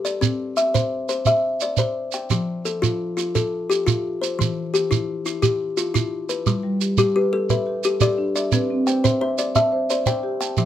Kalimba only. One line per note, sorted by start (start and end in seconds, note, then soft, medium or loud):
0.00 0.23 G4 medium
0.05 0.40 D5 medium
0.21 0.57 C4 medium
0.57 1.09 E5 medium
0.74 1.08 C5 medium
1.09 1.61 C5 medium
1.27 1.61 E5 medium
1.62 2.14 D5 medium
1.79 2.31 C5 medium
2.14 2.48 G5 medium
2.31 2.66 F3 medium
2.65 3.17 A4 medium
2.82 3.16 F4 medium
3.17 3.69 F4 medium
3.35 3.70 A4 medium
3.70 4.22 G4 medium
3.87 4.21 F4 medium
4.22 4.56 C5 medium
4.39 4.73 E3 medium
4.74 5.25 G4 medium
4.91 5.25 E4 medium
5.26 5.77 E4 medium
5.42 5.77 G4 medium
5.77 6.29 F4 medium
5.94 6.46 E4 medium
6.29 6.64 B4 medium
6.47 6.81 G3 medium
6.98 7.15 G4 medium
7.16 7.67 G4 medium
7.33 7.84 A4 medium
7.50 7.84 B4 medium
7.85 8.00 G4 medium
8.01 8.35 G4 medium
8.01 8.34 D5 medium
8.36 8.70 D5 medium
8.53 8.87 C4 medium
8.87 9.38 G5 medium
9.04 9.20 C5 medium
9.21 9.72 C5 medium
9.39 9.89 D5 medium
9.56 9.90 E5 medium
9.90 10.06 C5 medium
10.07 10.41 C5 medium
10.07 10.39 G5 medium
10.41 10.65 G5 medium
10.58 10.65 F3 medium